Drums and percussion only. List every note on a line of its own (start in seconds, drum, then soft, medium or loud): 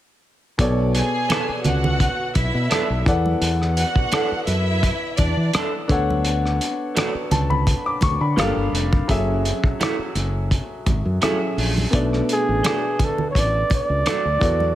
0.59 kick medium
0.59 closed hi-hat medium
0.95 closed hi-hat medium
1.30 cross-stick medium
1.30 closed hi-hat medium
1.30 high conga medium
1.64 closed hi-hat medium
1.64 muted conga soft
1.64 low conga medium
1.84 low conga medium
2.00 kick medium
2.00 closed hi-hat medium
2.35 kick medium
2.35 closed hi-hat medium
2.35 muted conga soft
2.71 cross-stick medium
2.71 closed hi-hat medium
2.71 high conga medium
3.06 kick loud
3.06 closed hi-hat medium
3.26 high conga medium
3.42 closed hi-hat medium
3.62 cross-stick soft
3.77 closed hi-hat medium
3.96 kick medium
4.12 cross-stick medium
4.12 closed hi-hat medium
4.12 high conga medium
4.47 closed hi-hat medium
4.47 muted conga soft
4.83 kick medium
4.83 closed hi-hat medium
4.83 muted conga soft
5.17 kick medium
5.17 closed hi-hat medium
5.17 muted conga soft
5.53 cross-stick medium
5.53 closed hi-hat medium
5.53 high conga medium
5.89 kick loud
5.89 closed hi-hat medium
6.10 high conga medium
6.25 closed hi-hat medium
6.46 cross-stick soft
6.61 closed hi-hat medium
6.96 cross-stick medium
6.96 closed hi-hat medium
6.96 high conga medium
7.31 closed hi-hat medium
7.31 muted conga soft
7.31 low conga medium
7.50 low conga medium
7.67 kick medium
7.67 closed hi-hat medium
7.67 muted conga soft
8.01 kick medium
8.01 closed hi-hat medium
8.01 muted conga soft
8.38 cross-stick medium
8.38 closed hi-hat medium
8.38 high conga medium
8.75 closed hi-hat medium
8.93 kick medium
8.93 high conga medium
9.09 kick medium
9.09 closed hi-hat medium
9.45 closed hi-hat medium
9.64 kick medium
9.81 cross-stick loud
9.81 closed hi-hat medium
9.81 high conga medium
10.15 closed hi-hat medium
10.15 muted conga soft
10.51 kick medium
10.51 closed hi-hat medium
10.86 kick medium
10.86 closed hi-hat medium
10.86 muted conga soft
10.86 low conga medium
11.22 cross-stick medium
11.22 closed hi-hat medium
11.22 high conga medium
11.58 open hi-hat medium
11.78 high conga medium
11.93 kick medium
11.93 closed hi-hat medium
12.13 cross-stick soft
12.29 closed hi-hat medium
12.64 cross-stick medium
12.64 closed hi-hat medium
12.64 high conga medium
12.99 kick medium
12.99 closed hi-hat medium
12.99 muted conga soft
12.99 low conga medium
13.18 low conga medium
13.35 kick medium
13.35 closed hi-hat medium
13.70 kick medium
13.70 closed hi-hat medium
13.70 muted conga soft
14.06 cross-stick medium
14.06 closed hi-hat medium
14.06 high conga medium
14.41 kick loud
14.41 closed hi-hat medium
14.41 high conga soft
14.60 high conga medium